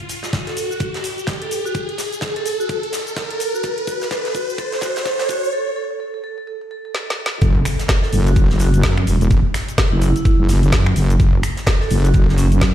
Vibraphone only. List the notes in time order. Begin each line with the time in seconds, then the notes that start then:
0.47 A4
0.57 A4
0.71 F#4
1.42 A4
1.51 A4
1.65 F#4
2.36 A4
2.46 A4
2.60 F#4
3.31 A4
3.40 A4
3.54 F#4
3.64 A4
3.78 A4
3.88 F#4
4.11 A4
4.25 A4
4.35 F#4
4.58 A4
4.73 A4
4.82 F#4
5.06 A4
5.20 A4
5.29 F#4
5.53 A4
5.67 A4
5.76 A4
5.90 A4
6.00 A4
6.14 A4
6.24 A4
6.38 A4
6.47 A4
6.61 A4
6.71 A4
6.85 A4
6.95 A4
7.09 A4
7.18 A4
7.32 A4
8.03 A4
8.13 A4
8.27 F#4
8.60 F#4
8.74 F#4
9.92 E4
10.02 E4
10.16 E4
10.25 E4
11.81 A4
11.91 A4
12.05 F#4
12.38 C#4